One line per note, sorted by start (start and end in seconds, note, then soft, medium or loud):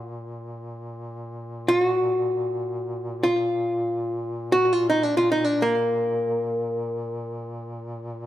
0.00 8.26 A#2 soft
0.00 0.11 F#4 medium
0.11 0.48 F4 medium
0.48 0.70 F#4 medium
0.70 1.68 F4 medium
1.68 1.81 F4 medium
1.81 3.23 F#4 medium
3.23 4.52 F4 medium
4.52 4.73 F#4 medium
4.73 4.89 F4 medium
4.90 5.03 D#4 medium
5.03 5.17 D4 medium
5.17 5.31 F4 medium
5.32 5.44 D#4 medium
5.44 5.61 D4 medium
5.62 8.09 A#3 medium